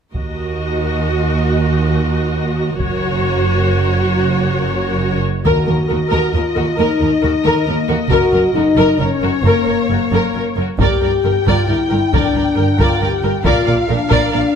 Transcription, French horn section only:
5.45 6.31 F#4 medium
6.34 6.79 F4 medium
6.78 7.65 D#4 medium
7.67 8.10 A#3 medium
8.10 8.54 F#4 medium
8.54 8.98 D#4 medium
8.99 9.44 C#4 medium
9.43 10.56 A#3 medium
10.80 11.43 G4 medium
11.47 11.69 F4 medium
11.67 12.12 E4 medium
12.12 12.79 D4 medium
12.79 13.01 F4 medium
13.02 13.46 G4 medium
13.46 13.89 F4 medium
13.89 14.31 D4 medium
14.33 14.55 D4 medium

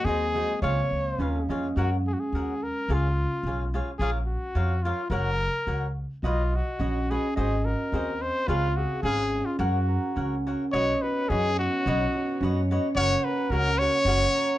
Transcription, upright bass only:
0.05 0.42 D#2 loud
0.62 0.81 C#2 medium
0.91 1.16 C#2 medium
1.18 1.46 D#2 medium
1.49 1.74 F2 medium
1.76 2.13 F#2 medium
2.32 2.69 D#2 medium
2.89 3.25 C#2 medium
3.43 3.79 B1 medium
3.99 4.35 A#1 medium
4.55 4.91 F2 medium
5.10 5.47 F#1 medium
5.67 6.04 C#2 medium
6.23 6.60 B1 medium
6.80 7.16 A#1 medium
7.37 7.74 G#1 medium
7.92 8.29 D#2 medium
8.48 8.84 C#2 medium
9.03 9.39 G#1 medium
9.59 9.96 F#2 medium
10.16 10.54 C#2 medium
10.73 10.93 B1 medium
11.30 11.66 F#2 medium
11.86 12.05 B1 medium
12.41 12.76 F#2 medium
12.95 13.14 F#1 medium
13.50 13.86 C#2 medium
14.05 14.24 F#1 medium

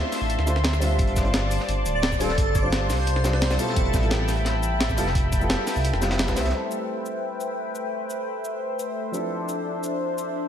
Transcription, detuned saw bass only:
0.21 0.37 A1 medium
0.39 0.98 D2 medium
0.99 1.59 G1 loud
1.68 1.84 G1 medium
1.86 2.36 D1 loud
2.38 2.91 G1 loud
2.90 3.58 C2 medium
3.76 3.92 F1 medium
3.94 4.97 A1 medium
4.98 5.57 F1 medium
5.76 5.92 C2 medium
5.93 6.38 F1 medium
6.37 6.45 C2 medium
6.45 6.53 C2 loud

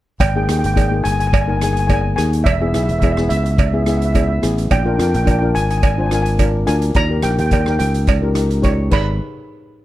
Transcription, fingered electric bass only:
0.20 0.47 G#1 medium
0.49 0.63 D#2 medium
0.65 1.02 G#1 medium
1.06 2.14 G1 medium
2.18 2.44 D#2 medium
2.46 2.72 E1 medium
2.74 2.88 B1 medium
2.89 3.27 E1 medium
3.31 4.39 C#2 medium
4.43 4.69 A1 medium
4.71 4.97 A#1 loud
4.99 5.13 F2 medium
5.15 5.52 A#1 medium
5.56 6.64 G#1 medium
6.68 6.94 D2 medium
6.95 7.22 D#2 medium
7.24 7.38 A#1 medium
7.39 7.77 D#2 medium
7.80 8.89 C#2 medium
8.92 9.19 G#1 medium

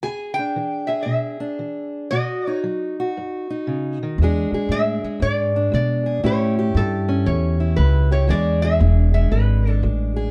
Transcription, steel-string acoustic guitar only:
0.03 0.52 E2 medium
0.03 0.87 G#4 medium
0.39 1.39 D4 soft
0.56 1.04 E3 medium
0.88 2.08 G#4 medium
1.06 1.55 B2 medium
1.40 2.08 D4 medium
1.59 2.08 E3 soft
2.12 2.60 B2 medium
2.12 2.98 F#4 medium
2.47 3.49 D#4 medium
2.64 3.12 F#3 medium
3.00 4.17 F#4 medium
3.17 3.64 F#2 medium
3.50 4.17 D#4 medium
3.67 4.01 C#3 medium
4.03 4.19 D#3 medium
4.22 4.68 E2 medium
4.22 5.03 G#3 medium
4.22 5.55 D4 medium
4.22 4.53 G#4 medium
4.54 6.05 G#4 medium
4.71 5.18 E2 medium
5.04 6.23 G#3 medium
5.20 5.69 E2 medium
5.56 6.22 D4 medium
5.72 6.20 E2 medium
6.06 6.22 G#4 medium
6.23 6.72 A2 medium
6.23 7.07 C#4 medium
6.23 7.60 E4 medium
6.23 6.57 G4 medium
6.59 8.10 G4 medium
6.76 7.24 A2 medium
7.08 8.27 C#4 medium
7.27 7.75 A2 medium
7.60 8.29 E4 medium
7.76 8.25 A2 medium
8.11 8.27 G4 medium
8.27 8.76 E2 medium
8.27 9.14 G#3 medium
8.27 9.66 D4 medium
8.27 8.64 G#4 medium
8.65 10.15 G#4 medium
8.79 9.28 E2 medium
9.14 10.31 G#3 medium
9.32 9.80 E2 medium
9.67 10.31 D4 medium
9.83 10.31 E2 medium
10.16 10.31 G#4 medium

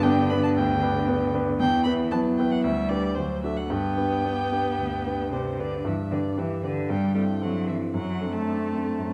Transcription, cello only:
0.00 1.56 D3 medium
1.58 2.13 E3 medium
2.12 2.65 F#3 medium
2.64 3.16 G3 medium
3.17 3.69 F#3 medium
3.71 5.29 B3 medium
5.31 5.60 C3 soft
5.59 5.85 D3 soft
5.85 5.93 E3 medium
6.11 6.19 D3 medium
6.37 6.63 E3 medium
6.64 6.91 D3 medium
6.89 7.13 G3 medium
7.14 7.22 G3 medium
7.42 7.69 F#3 medium
7.68 7.94 E3 medium
7.94 8.31 F#3 medium
8.32 9.13 A3 medium

